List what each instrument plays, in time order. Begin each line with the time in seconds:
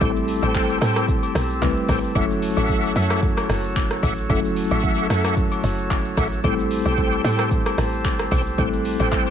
Already playing: pipe organ C4 G4 A5 E6
0.01 log drum bass A1, tine electric piano G3 A3 C4 E4 A4, tonewheel organ A4 C5 G5, kick, high agogo, shaker
0.16 shaker
0.28 open hi-hat, shaker
0.42 log drum bass A1, tonewheel organ A4 C5 G5, high agogo, shaker
0.55 kick, clap, shaker
0.69 high agogo, shaker
0.81 log drum bass A2, tonewheel organ A4 C5 G5, cross-stick, open hi-hat, shaker
0.96 cross-stick, high agogo, shaker
1.08 kick, shaker
1.23 high agogo, shaker
1.35 log drum bass B1, cross-stick, open hi-hat, shaker
1.50 shaker
1.62 log drum bass C2, tine electric piano G3 A3 C4 E4 B4, kick, clap, high agogo, shaker
1.77 shaker
1.88 log drum bass A1, tonewheel organ A4 C5 G5, kick, cross-stick, open hi-hat, high agogo, shaker
2.04 shaker
2.15 log drum bass F#1, tine electric piano F#3 A3 C#4 E4 A4, pipe organ F#4 C#5, tonewheel organ A4 E5 F#5, kick, high agogo, shaker
2.31 shaker
2.42 open hi-hat, shaker
2.57 log drum bass A1, tonewheel organ A4 E5 F#5, high agogo, shaker
2.69 kick, shaker
2.84 high agogo
2.95 log drum bass F#2, tonewheel organ A4 E5 F#5, open hi-hat, shaker
3.10 cross-stick, high agogo, shaker
3.23 kick, shaker
3.37 cross-stick, high agogo, shaker
3.49 log drum bass F#1, cross-stick, open hi-hat, shaker
3.64 shaker
3.76 kick, clap, high agogo, shaker
3.91 cross-stick, shaker
4.03 log drum bass A1, tonewheel organ A4 E5 F#5, kick, open hi-hat, high agogo, shaker
4.18 shaker
4.29 log drum bass F#1, tine electric piano F#3 A3 C#4 E4 A4, tonewheel organ A4 E5 F#5, kick, high agogo, shaker
4.45 shaker
4.57 open hi-hat, shaker
4.71 log drum bass A1, tonewheel organ A4 E5 F#5, high agogo, shaker
4.83 kick, shaker
4.98 high agogo
5.10 log drum bass F#2, tonewheel organ A4 E5 F#5, cross-stick, open hi-hat, shaker
5.25 cross-stick, high agogo, shaker
5.37 kick, shaker
5.52 high agogo, shaker
5.64 log drum bass F#1, open hi-hat, shaker
5.79 shaker
5.90 kick, clap, high agogo, shaker
6.05 shaker
6.17 log drum bass A1, tonewheel organ A4 E5 F#5, kick, cross-stick, open hi-hat, high agogo, shaker
6.32 shaker
6.44 log drum bass A1, tine electric piano G3 A3 C4 E4 A4, pipe organ G4 C5 E6, tonewheel organ A4 C5 G5, kick, high agogo, shaker
6.59 shaker
6.71 open hi-hat, shaker
6.85 log drum bass B1, tonewheel organ A4 C5 G5, high agogo, shaker
6.98 kick, shaker
7.12 high agogo
7.24 log drum bass A2, tonewheel organ A4 C5 G5, open hi-hat, shaker
7.39 cross-stick, high agogo, shaker
7.51 kick, shaker
7.66 cross-stick, high agogo, shaker
7.78 log drum bass A1, cross-stick, open hi-hat, shaker
7.93 shaker
8.05 kick, clap, high agogo, shaker
8.19 cross-stick, shaker
8.31 log drum bass B1, tonewheel organ A4 C5 G5, kick, open hi-hat, high agogo, shaker
8.46 shaker
8.58 log drum bass A1, tine electric piano G3 A3 C4 E4 A4, tonewheel organ A4 C5 G5, pipe organ F#6, kick, high agogo, shaker
8.73 shaker
8.85 open hi-hat, shaker
9.00 log drum bass A1, tonewheel organ A4 C5 G5, high agogo, shaker
9.12 kick, clap, low woodblock, shaker
9.27 high agogo, shaker